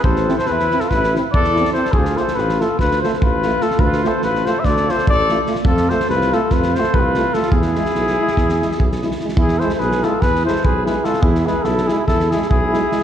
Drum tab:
SD |-oooooooooo--ooooo|-oooooo-oooo--o-oo|-oo-ooo-oooo--o-oo|-oooooo-oooo--o-oo|
BD |o-------o---o-----|o-------o---o-----|o-------o---o-----|o-------o---o-----|

SD |-ooooo-ooooo-ooooo|-oooooo-oooo--o-oo|-oo-ooo-oooo--o-o-|
BD |o-------o---o-----|o-------o---o-----|o-------o---o-----|